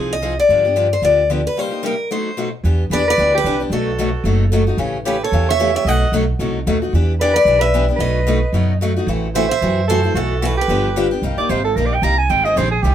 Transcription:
Already playing: C2 F3 C4 D#4 G#4
0.13 D#5
0.22 F3 C4 D#4 G#4
0.40 D5
0.49 G2 D3 F3 B3 D4 G4
0.65 B3 D4 G4
0.76 D3 F3 B3 D4 G4
0.93 C5
1.02 D2 D3 F3 B3 D4 G4 D5
1.30 D3 F3 B3 D4 G4
1.47 B4
1.57 C3 G3 A#3 D#4 G4 C5
1.71 A#3 D#4 G4
1.83 C3 G3 A#3 D#4 G4 A#4
2.10 B2 F#3 A3 D#4 F#4 C5
2.37 B2 F#3 A3 D#4 F#4
2.63 E2 E3 B3 D4 G4
2.90 E2 E3 B3 D4 G4 B4 D5
3.08 B4 D5
3.18 D2 E3 B3 D4 G4
3.35 G4 B4
3.44 C2 E3 B3 D4 G4
3.60 B3 D4 G4
3.70 B1 B2 F#3 A3 D#4 F#4 A4
3.98 B2 F#3 A3 D#4 F#4
4.24 F#1 B2 F#3 A3 D#4 F#4
4.52 B2 F#3 A3 D#4 F#4
4.67 A3 D#4 F#4
4.77 A1 C#3 E3 A3 C#4 G4
5.05 C#3 E3 A3 C#4 G4 B4
5.23 A4 C#5
5.32 E2 C#3 E3 A3 C#4 G4
5.49 C#5 E5
5.59 C#3 E3 A3 C#4 G4
5.75 A3 C#4 G4 C#5 E5
5.85 B1 B2 F#3 A3 D#4 F#4 D#5 F#5
6.12 B1 B2 F#3 A3 D#4 F#4
6.39 C2 B2 F#3 A3 D#4 F#4
6.67 D#2 B2 F#3 A3 D#4 F#4
6.82 A3 D#4 F#4
6.93 E2 E3 B3 D4 G4
7.19 E3 B3 D4 G4 B4 D5
7.33 B4 D5
7.45 B1 E3 B3 D4 G4
7.59 B4 E5
7.74 E3 B3 D4 G4
7.88 B3 D4 G4
7.96 B1 B2 F#3 B4
8.00 A3 D#4 F#4 D#5
8.27 B2 F#3 A3 D#4 F#4
8.52 F#2 B2 F#3 A3 D#4 F#4
8.81 B2 F#3 A3 D#4 F#4
8.96 A3 D#4 F#4
9.07 A1 C3 E3 A3 E4 F#4
9.35 C3 E3 A3 E4 F#4 C5 E5
9.49 C5 E5
9.62 F#2 C3 E3 A3 E4 F#4
9.88 C3 E3 A3 E4 F#4 A4 C5
10.03 A3 E4 F#4
10.14 B1 B2 E3 A3 E4 F#4 A4
10.42 B2 E3 A3 E4 F#4 B4
10.57 G4
10.61 B4
10.68 G1 D3 F3 B3 D4 G4
10.96 D3 F3 B3 D4 G4
11.11 B3 D4 G4
11.22 C2 C3 G3 A#3 D#4 G4
11.38 A#3 D#4 G4 D5, muted upright bass stroke
11.49 G#1 C3 G3 A#3 D#4 G4 C5
11.64 A4
11.76 A#1 C3 G3 A#3 D#4 G4 A#4
11.86 D5
11.94 G5
12.02 C2 C3 G3 A#3 D#4 G4 A#5
12.18 G#5
12.29 G#1 D#3 G3 C4 D#4 G#4 G5
12.45 C4 D#4 G#4 D#5
12.56 A#1 D#3 G3 C4 D#4 G#4 C5
12.71 G#4
12.83 C2 D#3 G3 C4 D#4 G4 G#4

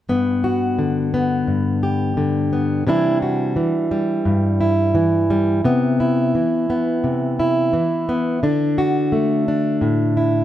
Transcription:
0.09 G2 B3
0.44 F#4
0.79 D3
1.14 B3
1.47 G2
1.83 G4
2.17 D3
2.53 B3
2.87 C3 E3 G3 D4 E4
3.22 F#4
3.56 E3
3.91 G3
4.25 G2
4.61 E4
4.95 E3
5.30 G3
5.64 C3 B3
6.00 E4
6.35 E3
6.70 B3
7.04 C3
7.40 E4
7.73 E3
8.09 B3
8.43 D3 D4
8.78 F#4
9.12 A3
9.48 D4
9.81 A2
10.17 E4

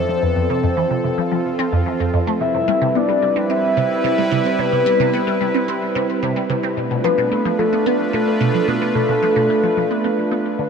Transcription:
Already playing: E3 F3 C4 A4 C5
0.09 F3
0.22 F2 F4 B4
0.36 F2
0.50 C3 C5
0.63 F2
0.77 E3
0.91 C3
1.04 C3
1.18 F3
1.32 F3
1.59 C4
1.72 F2
1.86 E3
2.00 F2
2.14 F2
2.27 A3
2.41 C3 G3 E4 B4 E5
2.54 C3
2.68 G3
2.81 C3
2.95 B3 D5
3.09 G3
3.22 G3
3.36 C4
3.50 C4 E5
3.77 C3
4.04 C3
4.18 G3
4.31 C3
4.45 C4
4.59 C3 B4
4.72 C3
4.86 G3
5.00 C3
5.13 B3
5.27 G3
5.41 G3
5.54 C4
5.68 C4
5.95 C3
6.23 C3
6.36 G3
6.50 C3
6.63 C4
6.77 B2 A3 D4 F4 B4
6.91 B2
7.04 F3 B4
7.18 B2
7.32 A3
7.45 F3
7.59 F3 A4
7.73 B3
7.86 B3 B4
8.13 B2 A4
8.41 B2
8.54 F3
8.68 B2 B4
8.82 B3
8.95 B2 A4
9.09 B2
9.23 F3
9.36 B2
9.50 A3
9.63 F3
9.77 F3
9.91 B3
10.04 B3
10.31 B3
10.59 D3

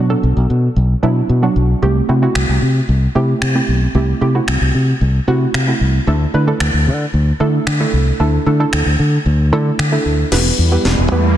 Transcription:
Already playing: B2
0.10 F#3 B3 D4 A4
0.23 B1
0.37 B1
0.50 B2
0.76 B1
1.03 B2 F#3 B3 D4 E4
1.29 B2
1.42 F#3 B3 D4 F#4
1.56 B1
1.82 C2 A3 C4 E4 G4
2.09 C3 A3 C4 E4 F#4
2.22 A3 C4 E4 F#4
2.35 C2, finger snap
2.49 C2
2.62 C3
2.89 C2
3.15 C3 A3 C4 E4 G4
3.42 C3, finger snap
3.55 A3 C4 E4 G4
3.68 B1
3.95 C2 A3 C4 E4 G4
4.21 C3 A3 C4 E4 G4
4.35 A3 C4 E4 F#4
4.48 C2, finger snap
4.61 C2
4.75 C3
5.01 C2
5.28 C3 A3 C4 E4 F#4
5.54 C3, finger snap
5.67 A3 C4 E4 F#4
5.81 C2
6.07 D2 A3 D4 E4 A4
6.34 D3 A3 D4 E4 B4
6.47 A3 D4 E4 A4
6.60 D2, finger snap
6.74 D2
6.87 D3
7.14 D2
7.40 D3 A3 D4 E4 A4
7.67 D3, finger snap
7.80 A3 D4 E4 A4
7.93 C2
8.20 D2 A3 D4 E4 A4
8.46 D3 A3 D4 E4 A4
8.60 A3 D4 E4 A4
8.73 D2, finger snap
8.86 D2
8.99 D3
9.26 D2
9.52 D3 A3 D4 E4 A4
9.79 D3, finger snap
9.92 A3 D4 E4 A4
10.05 D2
10.32 E1 G3 B3 E4 G4 B4, snare, crash, riser
10.59 E2
10.72 B3 E4 G4 B4
10.85 E1, snare
10.98 E1
11.12 E2 B3 E4 G4 B4

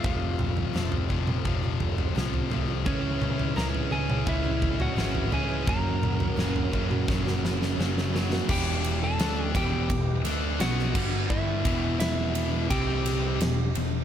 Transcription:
Already playing: F4 F5
0.03 F1 F2 C3 F3 A3 C4 F4, kick, floor tom
0.38 F3 A3 C4 F4, floor tom, mid tom
0.56 F3 A3 C4 F4, floor tom
0.73 F1 F2 C3 F3 A3 C4 F4, snare
0.92 floor tom
1.08 F1 F2 C3 F3 A3 C4 F4, kick
1.27 F3 A3 C4 F4, mid tom
1.44 F1 F2 C3 F3 A3 C4 F4, kick, floor tom, mid tom
1.62 F3 A3 C4 F4
1.80 F1, floor tom, mid tom
1.97 F3 A3 C4 F4, floor tom
2.15 C2 F2 C3 F3 A3 C4 F4, snare
2.34 floor tom
2.50 F2 C3 F3 A3 C4 F4, floor tom
2.67 F3 A3 C4 F4
2.85 C#2 C#3 E3 G#3 C#4 E4 C#5, kick, floor tom
3.20 C#3 E3 G#3 C#4 E4, floor tom, mid tom
3.37 G#3 C#4 E4, floor tom
3.56 C#2 C#3 E3 G#3 C#4 E4 A#4 A#5, snare
3.75 floor tom
3.91 C#2 C#3 E3 G#3 C#4 E4 G#4 G#5
4.08 G#3 C#4 E4, mid tom
4.26 C#2 C#3 E3 G#3 C#4 E4 E5, kick, floor tom, mid tom
4.43 G#3 C#4 E4
4.62 kick, floor tom
4.79 G#3 C#4 E4 F#4 F#5, floor tom
4.96 G#1 C#3 E3 G#3 C#4 E4, snare
5.15 floor tom
5.31 C#2 C#3 E3 G#3 C#4 E4 G#4 G#5, floor tom
5.49 G#3 C#4 E4
5.66 F#1 F#2 C#3 F#3 A#3 C#4 F#4 A#4 A#5, kick, floor tom
6.01 F#3 A#3 C#4 F#4, floor tom, mid tom
6.19 F#3 A#3 C#4 F#4, floor tom
6.36 F#1 F#2 C#3 F#3 A#3 C#4 F#4, snare
6.56 floor tom
6.72 F#1 F#2 C#3 F#3 A#3 C#4 F#4, kick
6.90 F#3 A#3 C#4 F#4, mid tom
7.03 G#5
7.08 F#1 F#2 C#3 F#3 A#3 C#4 F#4, kick, snare
7.25 F#3 A#3 C#4 F#4, snare
7.42 F#1, snare
7.61 F#3 A#3 C#4 F#4, snare
7.78 F#1 F#2 C#3 F#3 A#3 C#4 F#4, snare
7.98 snare
8.13 F#2 C#3 F#3 A#3 C#4 F#4, snare
8.31 F#3 A#3 C#4 F#4, snare
8.49 E1 E2 B2 E3 G4 G5, kick, crash
8.84 ride
9.03 A4 A5
9.19 D2 D3 A3 D4, snare, ride
9.46 G5
9.55 E1 E2 B2 E3 G4 G5, kick, snare, ride
9.89 E1 E2 B2, kick, ride
10.24 D2 D3 A3 D4, snare, ride
10.60 B1 B2 F#3 B3 F#4 F#5, snare, ride
10.79 snare
10.95 G1 G2 D3 G3, kick, crash
11.30 E4 E5, kick
11.65 E1 E2 B2 E3, kick, ride
12.00 E4 E5, snare, ride
12.35 ride
12.70 C2 C3 G3 C4 G4 G5, kick, ride
13.06 snare, ride
13.40 E1 E2 B2, snare, ride
13.75 E1 E2 B2, ride

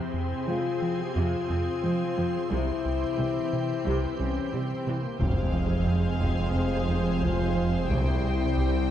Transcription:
Already playing: C3 C4 G#4 C5
0.14 F2
0.48 F2 F3 G#3 F4
0.82 F3
1.00 G4
1.16 F2 C3 F4
1.50 F2 F3
1.83 F2 F3 G#3
2.16 F2 F3
2.50 C2 C3 E3 E4 G4
2.86 C2
3.18 C2 C3 G3
3.53 C3
3.85 C2 C3
4.18 C2 E3 C#4
4.52 C2 C3 G3 C4
4.87 C2 C3 E3
5.02 A#3
5.18 F1 F2 C3 G#3 C4 G#4 C5 F5, taiko, sub drop
5.53 F3
5.87 F2
6.20 F2, taiko
6.53 F2 C4
6.89 F2
7.22 F2 F4, taiko
7.57 F2
7.89 C2 G3 E4 G4 G5, taiko
8.23 C3
8.57 C2

